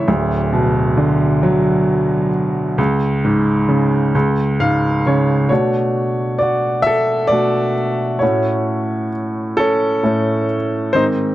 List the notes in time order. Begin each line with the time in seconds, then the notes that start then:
0.08 D1 D2
0.53 B2
0.97 D3
1.43 F#3
2.78 C#2
3.24 G#2
3.69 C#3
4.15 C#2
4.60 G#2 F5
5.07 C#3 C#5
5.49 B2 A3 D4 F#4 C#5
6.39 F#4 D5
6.82 E5
6.87 A4
7.27 B2 D5
7.32 A3 D4 F#4
8.19 A2 A3 C#4 C#5
8.23 F#4
9.57 C#4 A4
10.03 A2 A3 C#4
10.93 G#2 D#3 C4 D#4 C5